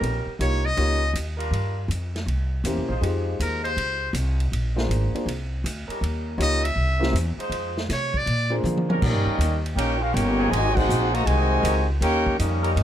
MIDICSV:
0, 0, Header, 1, 9, 480
1, 0, Start_track
1, 0, Tempo, 375000
1, 19, Time_signature, 4, 2, 24, 8
1, 16422, End_track
2, 0, Start_track
2, 0, Title_t, "Muted trumpet"
2, 0, Program_c, 0, 59
2, 530, Note_on_c, 0, 73, 92
2, 836, Note_on_c, 0, 75, 106
2, 855, Note_off_c, 0, 73, 0
2, 1472, Note_off_c, 0, 75, 0
2, 4380, Note_on_c, 0, 70, 78
2, 4656, Note_off_c, 0, 70, 0
2, 4664, Note_on_c, 0, 72, 88
2, 5262, Note_off_c, 0, 72, 0
2, 8226, Note_on_c, 0, 75, 100
2, 8499, Note_on_c, 0, 76, 97
2, 8519, Note_off_c, 0, 75, 0
2, 9146, Note_off_c, 0, 76, 0
2, 10152, Note_on_c, 0, 73, 96
2, 10465, Note_on_c, 0, 74, 101
2, 10485, Note_off_c, 0, 73, 0
2, 10924, Note_off_c, 0, 74, 0
2, 16422, End_track
3, 0, Start_track
3, 0, Title_t, "Trumpet section"
3, 0, Program_c, 1, 61
3, 11564, Note_on_c, 1, 67, 80
3, 11566, Note_on_c, 1, 75, 96
3, 11568, Note_on_c, 1, 70, 87
3, 11571, Note_on_c, 1, 61, 90
3, 12299, Note_off_c, 1, 67, 0
3, 12300, Note_off_c, 1, 75, 0
3, 12301, Note_off_c, 1, 70, 0
3, 12302, Note_off_c, 1, 61, 0
3, 12497, Note_on_c, 1, 73, 88
3, 12504, Note_on_c, 1, 70, 90
3, 12506, Note_on_c, 1, 79, 102
3, 12514, Note_on_c, 1, 63, 84
3, 12794, Note_off_c, 1, 73, 0
3, 12798, Note_off_c, 1, 70, 0
3, 12799, Note_off_c, 1, 79, 0
3, 12804, Note_off_c, 1, 63, 0
3, 12818, Note_on_c, 1, 77, 96
3, 12819, Note_on_c, 1, 61, 84
3, 12824, Note_on_c, 1, 67, 82
3, 12826, Note_on_c, 1, 70, 79
3, 12967, Note_off_c, 1, 70, 0
3, 12982, Note_on_c, 1, 70, 89
3, 12983, Note_on_c, 1, 79, 100
3, 12986, Note_off_c, 1, 61, 0
3, 12986, Note_off_c, 1, 77, 0
3, 12987, Note_on_c, 1, 73, 87
3, 12988, Note_off_c, 1, 67, 0
3, 12988, Note_on_c, 1, 63, 88
3, 13450, Note_on_c, 1, 66, 104
3, 13457, Note_on_c, 1, 75, 95
3, 13458, Note_on_c, 1, 80, 115
3, 13461, Note_on_c, 1, 72, 94
3, 13465, Note_off_c, 1, 70, 0
3, 13465, Note_off_c, 1, 79, 0
3, 13467, Note_off_c, 1, 63, 0
3, 13467, Note_off_c, 1, 73, 0
3, 13759, Note_off_c, 1, 72, 0
3, 13766, Note_on_c, 1, 68, 103
3, 13771, Note_on_c, 1, 78, 103
3, 13772, Note_off_c, 1, 66, 0
3, 13774, Note_on_c, 1, 72, 101
3, 13775, Note_on_c, 1, 63, 93
3, 13776, Note_off_c, 1, 75, 0
3, 13777, Note_off_c, 1, 80, 0
3, 14246, Note_off_c, 1, 72, 0
3, 14253, Note_off_c, 1, 68, 0
3, 14256, Note_off_c, 1, 78, 0
3, 14258, Note_off_c, 1, 63, 0
3, 14258, Note_on_c, 1, 82, 104
3, 14260, Note_on_c, 1, 66, 94
3, 14260, Note_on_c, 1, 75, 92
3, 14262, Note_on_c, 1, 72, 86
3, 14395, Note_off_c, 1, 66, 0
3, 14395, Note_off_c, 1, 75, 0
3, 14399, Note_off_c, 1, 72, 0
3, 14410, Note_on_c, 1, 66, 108
3, 14410, Note_on_c, 1, 75, 97
3, 14410, Note_on_c, 1, 80, 112
3, 14414, Note_on_c, 1, 72, 104
3, 14425, Note_off_c, 1, 82, 0
3, 15212, Note_off_c, 1, 66, 0
3, 15212, Note_off_c, 1, 75, 0
3, 15212, Note_off_c, 1, 80, 0
3, 15214, Note_off_c, 1, 72, 0
3, 15370, Note_on_c, 1, 70, 94
3, 15376, Note_on_c, 1, 63, 103
3, 15377, Note_on_c, 1, 79, 116
3, 15383, Note_on_c, 1, 73, 97
3, 15823, Note_off_c, 1, 70, 0
3, 15826, Note_off_c, 1, 63, 0
3, 15827, Note_off_c, 1, 79, 0
3, 15830, Note_off_c, 1, 73, 0
3, 15860, Note_on_c, 1, 75, 84
3, 15861, Note_on_c, 1, 61, 75
3, 15861, Note_on_c, 1, 70, 72
3, 15866, Note_on_c, 1, 67, 77
3, 16422, Note_off_c, 1, 61, 0
3, 16422, Note_off_c, 1, 67, 0
3, 16422, Note_off_c, 1, 70, 0
3, 16422, Note_off_c, 1, 75, 0
3, 16422, End_track
4, 0, Start_track
4, 0, Title_t, "Grand piano"
4, 0, Program_c, 2, 0
4, 504, Note_on_c, 2, 58, 63
4, 508, Note_on_c, 2, 63, 56
4, 513, Note_on_c, 2, 67, 56
4, 518, Note_on_c, 2, 65, 57
4, 521, Note_on_c, 2, 73, 72
4, 785, Note_off_c, 2, 58, 0
4, 787, Note_off_c, 2, 63, 0
4, 790, Note_off_c, 2, 67, 0
4, 792, Note_off_c, 2, 65, 0
4, 794, Note_off_c, 2, 73, 0
4, 979, Note_on_c, 2, 58, 70
4, 985, Note_on_c, 2, 63, 62
4, 986, Note_on_c, 2, 65, 63
4, 986, Note_on_c, 2, 73, 76
4, 990, Note_on_c, 2, 67, 61
4, 1263, Note_off_c, 2, 58, 0
4, 1266, Note_off_c, 2, 63, 0
4, 1266, Note_off_c, 2, 65, 0
4, 1266, Note_off_c, 2, 73, 0
4, 1268, Note_off_c, 2, 67, 0
4, 3393, Note_on_c, 2, 61, 54
4, 3394, Note_on_c, 2, 58, 64
4, 3402, Note_on_c, 2, 67, 61
4, 3403, Note_on_c, 2, 64, 53
4, 3405, Note_on_c, 2, 72, 69
4, 3671, Note_off_c, 2, 61, 0
4, 3672, Note_off_c, 2, 58, 0
4, 3676, Note_off_c, 2, 64, 0
4, 3676, Note_off_c, 2, 67, 0
4, 3677, Note_off_c, 2, 72, 0
4, 3854, Note_on_c, 2, 56, 64
4, 3856, Note_on_c, 2, 63, 56
4, 3860, Note_on_c, 2, 65, 59
4, 3870, Note_on_c, 2, 67, 63
4, 3871, Note_on_c, 2, 72, 73
4, 5200, Note_off_c, 2, 56, 0
4, 5201, Note_off_c, 2, 63, 0
4, 5203, Note_off_c, 2, 65, 0
4, 5208, Note_off_c, 2, 67, 0
4, 5209, Note_off_c, 2, 72, 0
4, 6088, Note_on_c, 2, 62, 60
4, 6092, Note_on_c, 2, 58, 63
4, 6094, Note_on_c, 2, 65, 54
4, 6101, Note_on_c, 2, 72, 67
4, 6102, Note_on_c, 2, 68, 56
4, 6543, Note_off_c, 2, 62, 0
4, 6544, Note_off_c, 2, 58, 0
4, 6546, Note_off_c, 2, 65, 0
4, 6549, Note_off_c, 2, 72, 0
4, 6550, Note_off_c, 2, 68, 0
4, 6586, Note_on_c, 2, 58, 54
4, 6588, Note_on_c, 2, 62, 57
4, 6588, Note_on_c, 2, 65, 52
4, 6594, Note_on_c, 2, 68, 54
4, 6598, Note_on_c, 2, 72, 65
4, 6732, Note_off_c, 2, 58, 0
4, 6733, Note_off_c, 2, 62, 0
4, 6733, Note_off_c, 2, 65, 0
4, 6736, Note_off_c, 2, 68, 0
4, 6738, Note_off_c, 2, 72, 0
4, 8164, Note_on_c, 2, 58, 70
4, 8166, Note_on_c, 2, 65, 69
4, 8167, Note_on_c, 2, 63, 65
4, 8169, Note_on_c, 2, 73, 81
4, 8172, Note_on_c, 2, 67, 64
4, 8458, Note_off_c, 2, 58, 0
4, 8459, Note_off_c, 2, 65, 0
4, 8460, Note_off_c, 2, 63, 0
4, 8461, Note_off_c, 2, 73, 0
4, 8463, Note_off_c, 2, 67, 0
4, 8954, Note_on_c, 2, 61, 70
4, 8958, Note_on_c, 2, 64, 65
4, 8959, Note_on_c, 2, 58, 81
4, 8964, Note_on_c, 2, 67, 69
4, 8972, Note_on_c, 2, 72, 79
4, 9117, Note_off_c, 2, 61, 0
4, 9119, Note_off_c, 2, 64, 0
4, 9120, Note_off_c, 2, 58, 0
4, 9122, Note_off_c, 2, 67, 0
4, 9126, Note_off_c, 2, 72, 0
4, 10883, Note_on_c, 2, 58, 76
4, 10883, Note_on_c, 2, 62, 66
4, 10883, Note_on_c, 2, 65, 72
4, 10893, Note_on_c, 2, 68, 69
4, 10899, Note_on_c, 2, 72, 81
4, 11505, Note_off_c, 2, 58, 0
4, 11505, Note_off_c, 2, 62, 0
4, 11505, Note_off_c, 2, 65, 0
4, 11510, Note_off_c, 2, 68, 0
4, 11513, Note_off_c, 2, 72, 0
4, 16422, End_track
5, 0, Start_track
5, 0, Title_t, "Trombone section"
5, 0, Program_c, 3, 61
5, 0, Note_on_c, 3, 55, 101
5, 0, Note_on_c, 3, 61, 96
5, 0, Note_on_c, 3, 63, 87
5, 0, Note_on_c, 3, 70, 114
5, 462, Note_off_c, 3, 63, 0
5, 465, Note_off_c, 3, 55, 0
5, 465, Note_off_c, 3, 61, 0
5, 466, Note_off_c, 3, 70, 0
5, 1759, Note_on_c, 3, 70, 104
5, 1763, Note_on_c, 3, 55, 100
5, 1766, Note_on_c, 3, 62, 90
5, 1767, Note_on_c, 3, 65, 93
5, 2381, Note_off_c, 3, 70, 0
5, 2382, Note_off_c, 3, 55, 0
5, 2384, Note_off_c, 3, 62, 0
5, 2385, Note_off_c, 3, 65, 0
5, 3686, Note_on_c, 3, 63, 96
5, 3688, Note_on_c, 3, 65, 90
5, 3693, Note_on_c, 3, 56, 93
5, 3694, Note_on_c, 3, 72, 108
5, 4305, Note_off_c, 3, 63, 0
5, 4306, Note_off_c, 3, 65, 0
5, 4308, Note_off_c, 3, 56, 0
5, 4309, Note_off_c, 3, 72, 0
5, 4651, Note_on_c, 3, 63, 81
5, 4651, Note_on_c, 3, 72, 102
5, 4652, Note_on_c, 3, 56, 98
5, 4662, Note_on_c, 3, 65, 81
5, 4765, Note_off_c, 3, 72, 0
5, 4766, Note_off_c, 3, 56, 0
5, 4766, Note_off_c, 3, 63, 0
5, 4772, Note_off_c, 3, 65, 0
5, 7527, Note_on_c, 3, 70, 94
5, 7529, Note_on_c, 3, 61, 86
5, 7534, Note_on_c, 3, 63, 83
5, 7545, Note_on_c, 3, 55, 93
5, 8147, Note_off_c, 3, 70, 0
5, 8148, Note_off_c, 3, 61, 0
5, 8151, Note_off_c, 3, 63, 0
5, 8156, Note_off_c, 3, 55, 0
5, 9451, Note_on_c, 3, 65, 90
5, 9453, Note_on_c, 3, 56, 98
5, 9465, Note_on_c, 3, 63, 102
5, 9469, Note_on_c, 3, 72, 113
5, 10070, Note_off_c, 3, 56, 0
5, 10070, Note_off_c, 3, 65, 0
5, 10077, Note_off_c, 3, 63, 0
5, 10078, Note_off_c, 3, 72, 0
5, 11375, Note_on_c, 3, 61, 92
5, 11377, Note_on_c, 3, 55, 98
5, 11381, Note_on_c, 3, 63, 92
5, 11384, Note_on_c, 3, 70, 116
5, 11991, Note_off_c, 3, 61, 0
5, 11992, Note_off_c, 3, 55, 0
5, 11994, Note_off_c, 3, 63, 0
5, 11996, Note_off_c, 3, 70, 0
5, 13278, Note_on_c, 3, 60, 100
5, 13280, Note_on_c, 3, 63, 102
5, 13283, Note_on_c, 3, 54, 102
5, 13284, Note_on_c, 3, 68, 126
5, 13893, Note_off_c, 3, 54, 0
5, 13898, Note_off_c, 3, 60, 0
5, 13899, Note_off_c, 3, 63, 0
5, 13905, Note_off_c, 3, 68, 0
5, 13909, Note_on_c, 3, 54, 84
5, 13914, Note_on_c, 3, 60, 77
5, 13914, Note_on_c, 3, 63, 77
5, 13921, Note_on_c, 3, 68, 93
5, 14135, Note_off_c, 3, 54, 0
5, 14138, Note_off_c, 3, 60, 0
5, 14138, Note_off_c, 3, 63, 0
5, 14143, Note_off_c, 3, 68, 0
5, 14866, Note_on_c, 3, 70, 112
5, 14872, Note_on_c, 3, 60, 84
5, 14882, Note_on_c, 3, 54, 99
5, 14884, Note_on_c, 3, 63, 83
5, 15093, Note_off_c, 3, 70, 0
5, 15096, Note_off_c, 3, 60, 0
5, 15103, Note_off_c, 3, 54, 0
5, 15104, Note_off_c, 3, 63, 0
5, 16164, Note_on_c, 3, 70, 119
5, 16168, Note_on_c, 3, 63, 94
5, 16169, Note_on_c, 3, 61, 97
5, 16174, Note_on_c, 3, 55, 100
5, 16281, Note_off_c, 3, 70, 0
5, 16284, Note_off_c, 3, 61, 0
5, 16284, Note_off_c, 3, 63, 0
5, 16287, Note_off_c, 3, 55, 0
5, 16422, End_track
6, 0, Start_track
6, 0, Title_t, "Trombone section"
6, 0, Program_c, 4, 61
6, 11536, Note_on_c, 4, 55, 86
6, 11536, Note_on_c, 4, 63, 75
6, 11537, Note_on_c, 4, 58, 78
6, 12285, Note_off_c, 4, 55, 0
6, 12285, Note_off_c, 4, 63, 0
6, 12286, Note_off_c, 4, 58, 0
6, 12473, Note_on_c, 4, 58, 82
6, 12478, Note_on_c, 4, 67, 93
6, 12482, Note_on_c, 4, 61, 92
6, 12781, Note_off_c, 4, 58, 0
6, 12784, Note_off_c, 4, 67, 0
6, 12786, Note_off_c, 4, 61, 0
6, 12792, Note_on_c, 4, 65, 80
6, 12972, Note_off_c, 4, 65, 0
6, 12978, Note_on_c, 4, 61, 86
6, 12982, Note_on_c, 4, 58, 89
6, 12982, Note_on_c, 4, 67, 88
6, 13452, Note_on_c, 4, 48, 91
6, 13455, Note_on_c, 4, 56, 102
6, 13461, Note_on_c, 4, 51, 96
6, 13463, Note_off_c, 4, 61, 0
6, 13464, Note_off_c, 4, 58, 0
6, 13464, Note_off_c, 4, 67, 0
6, 13759, Note_on_c, 4, 60, 88
6, 13761, Note_on_c, 4, 66, 90
6, 13764, Note_on_c, 4, 63, 92
6, 13774, Note_off_c, 4, 48, 0
6, 13775, Note_off_c, 4, 56, 0
6, 13778, Note_off_c, 4, 51, 0
6, 14241, Note_on_c, 4, 58, 94
6, 14250, Note_off_c, 4, 60, 0
6, 14251, Note_off_c, 4, 66, 0
6, 14252, Note_off_c, 4, 63, 0
6, 14382, Note_on_c, 4, 56, 107
6, 14383, Note_on_c, 4, 51, 100
6, 14386, Note_on_c, 4, 48, 107
6, 14417, Note_off_c, 4, 58, 0
6, 15198, Note_off_c, 4, 51, 0
6, 15198, Note_off_c, 4, 56, 0
6, 15199, Note_off_c, 4, 48, 0
6, 15354, Note_on_c, 4, 58, 96
6, 15355, Note_on_c, 4, 61, 90
6, 15365, Note_on_c, 4, 67, 85
6, 15815, Note_off_c, 4, 58, 0
6, 15815, Note_off_c, 4, 61, 0
6, 15820, Note_off_c, 4, 67, 0
6, 15848, Note_on_c, 4, 63, 75
6, 15849, Note_on_c, 4, 55, 78
6, 15851, Note_on_c, 4, 58, 69
6, 16422, Note_off_c, 4, 55, 0
6, 16422, Note_off_c, 4, 58, 0
6, 16422, Note_off_c, 4, 63, 0
6, 16422, End_track
7, 0, Start_track
7, 0, Title_t, "Upright bass"
7, 0, Program_c, 5, 32
7, 15, Note_on_c, 5, 34, 87
7, 310, Note_off_c, 5, 34, 0
7, 501, Note_on_c, 5, 36, 91
7, 967, Note_off_c, 5, 36, 0
7, 991, Note_on_c, 5, 37, 90
7, 1446, Note_off_c, 5, 37, 0
7, 1453, Note_on_c, 5, 39, 92
7, 1923, Note_off_c, 5, 39, 0
7, 1930, Note_on_c, 5, 43, 85
7, 2402, Note_off_c, 5, 43, 0
7, 2409, Note_on_c, 5, 41, 92
7, 2882, Note_off_c, 5, 41, 0
7, 2894, Note_on_c, 5, 36, 86
7, 3364, Note_off_c, 5, 36, 0
7, 3376, Note_on_c, 5, 40, 95
7, 3539, Note_on_c, 5, 36, 58
7, 3559, Note_off_c, 5, 40, 0
7, 3692, Note_off_c, 5, 36, 0
7, 3700, Note_on_c, 5, 34, 69
7, 3850, Note_off_c, 5, 34, 0
7, 3857, Note_on_c, 5, 41, 84
7, 4326, Note_off_c, 5, 41, 0
7, 4344, Note_on_c, 5, 39, 93
7, 4810, Note_off_c, 5, 39, 0
7, 4823, Note_on_c, 5, 37, 85
7, 5280, Note_off_c, 5, 37, 0
7, 5288, Note_on_c, 5, 36, 102
7, 5762, Note_off_c, 5, 36, 0
7, 5784, Note_on_c, 5, 34, 85
7, 6244, Note_off_c, 5, 34, 0
7, 6251, Note_on_c, 5, 32, 97
7, 6550, Note_off_c, 5, 32, 0
7, 6729, Note_on_c, 5, 36, 91
7, 7203, Note_off_c, 5, 36, 0
7, 7220, Note_on_c, 5, 38, 94
7, 7515, Note_off_c, 5, 38, 0
7, 7695, Note_on_c, 5, 39, 87
7, 8158, Note_off_c, 5, 39, 0
7, 8165, Note_on_c, 5, 37, 96
7, 8642, Note_off_c, 5, 37, 0
7, 8650, Note_on_c, 5, 36, 83
7, 9119, Note_off_c, 5, 36, 0
7, 9127, Note_on_c, 5, 40, 105
7, 9429, Note_off_c, 5, 40, 0
7, 9594, Note_on_c, 5, 41, 87
7, 10076, Note_off_c, 5, 41, 0
7, 10101, Note_on_c, 5, 48, 91
7, 10567, Note_off_c, 5, 48, 0
7, 10575, Note_on_c, 5, 46, 91
7, 11047, Note_off_c, 5, 46, 0
7, 11054, Note_on_c, 5, 50, 105
7, 11526, Note_off_c, 5, 50, 0
7, 11544, Note_on_c, 5, 46, 96
7, 11697, Note_off_c, 5, 46, 0
7, 11697, Note_on_c, 5, 43, 64
7, 11842, Note_off_c, 5, 43, 0
7, 11849, Note_on_c, 5, 39, 74
7, 12007, Note_off_c, 5, 39, 0
7, 12012, Note_on_c, 5, 39, 95
7, 12481, Note_off_c, 5, 39, 0
7, 12489, Note_on_c, 5, 34, 85
7, 12963, Note_off_c, 5, 34, 0
7, 12978, Note_on_c, 5, 31, 108
7, 13448, Note_off_c, 5, 31, 0
7, 13463, Note_on_c, 5, 32, 90
7, 13930, Note_off_c, 5, 32, 0
7, 13941, Note_on_c, 5, 34, 106
7, 14403, Note_off_c, 5, 34, 0
7, 14410, Note_on_c, 5, 36, 87
7, 14879, Note_off_c, 5, 36, 0
7, 14887, Note_on_c, 5, 37, 108
7, 15361, Note_off_c, 5, 37, 0
7, 15368, Note_on_c, 5, 39, 94
7, 15842, Note_off_c, 5, 39, 0
7, 15863, Note_on_c, 5, 41, 100
7, 16325, Note_off_c, 5, 41, 0
7, 16333, Note_on_c, 5, 43, 99
7, 16422, Note_off_c, 5, 43, 0
7, 16422, End_track
8, 0, Start_track
8, 0, Title_t, "Muted upright bass strokes"
8, 336, Note_on_c, 9, 29, 41
8, 464, Note_off_c, 9, 29, 0
8, 6575, Note_on_c, 9, 29, 44
8, 6703, Note_off_c, 9, 29, 0
8, 7534, Note_on_c, 9, 29, 44
8, 7662, Note_off_c, 9, 29, 0
8, 9436, Note_on_c, 9, 29, 44
8, 9564, Note_off_c, 9, 29, 0
8, 16422, End_track
9, 0, Start_track
9, 0, Title_t, "Drums"
9, 44, Note_on_c, 9, 51, 71
9, 172, Note_off_c, 9, 51, 0
9, 520, Note_on_c, 9, 44, 53
9, 520, Note_on_c, 9, 51, 73
9, 648, Note_off_c, 9, 44, 0
9, 648, Note_off_c, 9, 51, 0
9, 988, Note_on_c, 9, 51, 65
9, 1116, Note_off_c, 9, 51, 0
9, 1478, Note_on_c, 9, 44, 64
9, 1478, Note_on_c, 9, 51, 79
9, 1606, Note_off_c, 9, 44, 0
9, 1606, Note_off_c, 9, 51, 0
9, 1795, Note_on_c, 9, 51, 53
9, 1923, Note_off_c, 9, 51, 0
9, 1963, Note_on_c, 9, 51, 67
9, 2091, Note_off_c, 9, 51, 0
9, 2441, Note_on_c, 9, 44, 55
9, 2441, Note_on_c, 9, 51, 70
9, 2569, Note_off_c, 9, 44, 0
9, 2569, Note_off_c, 9, 51, 0
9, 2759, Note_on_c, 9, 38, 39
9, 2761, Note_on_c, 9, 51, 48
9, 2887, Note_off_c, 9, 38, 0
9, 2889, Note_off_c, 9, 51, 0
9, 2921, Note_on_c, 9, 51, 61
9, 3049, Note_off_c, 9, 51, 0
9, 3388, Note_on_c, 9, 44, 70
9, 3388, Note_on_c, 9, 51, 79
9, 3516, Note_off_c, 9, 44, 0
9, 3516, Note_off_c, 9, 51, 0
9, 3882, Note_on_c, 9, 51, 73
9, 4010, Note_off_c, 9, 51, 0
9, 4356, Note_on_c, 9, 44, 55
9, 4356, Note_on_c, 9, 51, 79
9, 4484, Note_off_c, 9, 44, 0
9, 4484, Note_off_c, 9, 51, 0
9, 4672, Note_on_c, 9, 51, 48
9, 4800, Note_off_c, 9, 51, 0
9, 4835, Note_on_c, 9, 51, 73
9, 4963, Note_off_c, 9, 51, 0
9, 5305, Note_on_c, 9, 44, 63
9, 5305, Note_on_c, 9, 51, 87
9, 5433, Note_off_c, 9, 44, 0
9, 5433, Note_off_c, 9, 51, 0
9, 5633, Note_on_c, 9, 51, 51
9, 5761, Note_off_c, 9, 51, 0
9, 5800, Note_on_c, 9, 51, 78
9, 5928, Note_off_c, 9, 51, 0
9, 6115, Note_on_c, 9, 38, 57
9, 6243, Note_off_c, 9, 38, 0
9, 6283, Note_on_c, 9, 44, 63
9, 6283, Note_on_c, 9, 51, 72
9, 6411, Note_off_c, 9, 44, 0
9, 6411, Note_off_c, 9, 51, 0
9, 6598, Note_on_c, 9, 51, 51
9, 6726, Note_off_c, 9, 51, 0
9, 6764, Note_on_c, 9, 51, 74
9, 6892, Note_off_c, 9, 51, 0
9, 7242, Note_on_c, 9, 44, 63
9, 7242, Note_on_c, 9, 51, 88
9, 7370, Note_off_c, 9, 44, 0
9, 7370, Note_off_c, 9, 51, 0
9, 7554, Note_on_c, 9, 51, 51
9, 7682, Note_off_c, 9, 51, 0
9, 7725, Note_on_c, 9, 51, 70
9, 7853, Note_off_c, 9, 51, 0
9, 8198, Note_on_c, 9, 44, 59
9, 8198, Note_on_c, 9, 51, 76
9, 8326, Note_off_c, 9, 44, 0
9, 8326, Note_off_c, 9, 51, 0
9, 8512, Note_on_c, 9, 51, 73
9, 8640, Note_off_c, 9, 51, 0
9, 8995, Note_on_c, 9, 38, 64
9, 9123, Note_off_c, 9, 38, 0
9, 9159, Note_on_c, 9, 44, 69
9, 9159, Note_on_c, 9, 51, 79
9, 9287, Note_off_c, 9, 44, 0
9, 9287, Note_off_c, 9, 51, 0
9, 9471, Note_on_c, 9, 51, 54
9, 9599, Note_off_c, 9, 51, 0
9, 9626, Note_on_c, 9, 51, 71
9, 9754, Note_off_c, 9, 51, 0
9, 9949, Note_on_c, 9, 38, 49
9, 10077, Note_off_c, 9, 38, 0
9, 10105, Note_on_c, 9, 38, 41
9, 10108, Note_on_c, 9, 44, 57
9, 10108, Note_on_c, 9, 51, 77
9, 10233, Note_off_c, 9, 38, 0
9, 10236, Note_off_c, 9, 44, 0
9, 10236, Note_off_c, 9, 51, 0
9, 10420, Note_on_c, 9, 36, 60
9, 10548, Note_off_c, 9, 36, 0
9, 10587, Note_on_c, 9, 51, 64
9, 10715, Note_off_c, 9, 51, 0
9, 11068, Note_on_c, 9, 47, 60
9, 11070, Note_on_c, 9, 44, 72
9, 11196, Note_off_c, 9, 47, 0
9, 11198, Note_off_c, 9, 44, 0
9, 11230, Note_on_c, 9, 47, 69
9, 11358, Note_off_c, 9, 47, 0
9, 11389, Note_on_c, 9, 47, 96
9, 11517, Note_off_c, 9, 47, 0
9, 11548, Note_on_c, 9, 49, 106
9, 11550, Note_on_c, 9, 36, 94
9, 11676, Note_off_c, 9, 49, 0
9, 11678, Note_off_c, 9, 36, 0
9, 12040, Note_on_c, 9, 44, 62
9, 12040, Note_on_c, 9, 51, 77
9, 12168, Note_off_c, 9, 44, 0
9, 12168, Note_off_c, 9, 51, 0
9, 12362, Note_on_c, 9, 51, 51
9, 12490, Note_off_c, 9, 51, 0
9, 12524, Note_on_c, 9, 51, 83
9, 12652, Note_off_c, 9, 51, 0
9, 13011, Note_on_c, 9, 44, 65
9, 13011, Note_on_c, 9, 51, 84
9, 13139, Note_off_c, 9, 44, 0
9, 13139, Note_off_c, 9, 51, 0
9, 13481, Note_on_c, 9, 51, 77
9, 13609, Note_off_c, 9, 51, 0
9, 13786, Note_on_c, 9, 36, 101
9, 13792, Note_on_c, 9, 49, 84
9, 13914, Note_off_c, 9, 36, 0
9, 13920, Note_off_c, 9, 49, 0
9, 13954, Note_on_c, 9, 44, 76
9, 14082, Note_off_c, 9, 44, 0
9, 14265, Note_on_c, 9, 51, 58
9, 14393, Note_off_c, 9, 51, 0
9, 14427, Note_on_c, 9, 51, 80
9, 14555, Note_off_c, 9, 51, 0
9, 14908, Note_on_c, 9, 44, 63
9, 14908, Note_on_c, 9, 51, 88
9, 15036, Note_off_c, 9, 44, 0
9, 15036, Note_off_c, 9, 51, 0
9, 15386, Note_on_c, 9, 51, 81
9, 15514, Note_off_c, 9, 51, 0
9, 15699, Note_on_c, 9, 36, 51
9, 15827, Note_off_c, 9, 36, 0
9, 15866, Note_on_c, 9, 44, 63
9, 15866, Note_on_c, 9, 51, 71
9, 15994, Note_off_c, 9, 44, 0
9, 15994, Note_off_c, 9, 51, 0
9, 16182, Note_on_c, 9, 51, 56
9, 16310, Note_off_c, 9, 51, 0
9, 16346, Note_on_c, 9, 51, 74
9, 16422, Note_off_c, 9, 51, 0
9, 16422, End_track
0, 0, End_of_file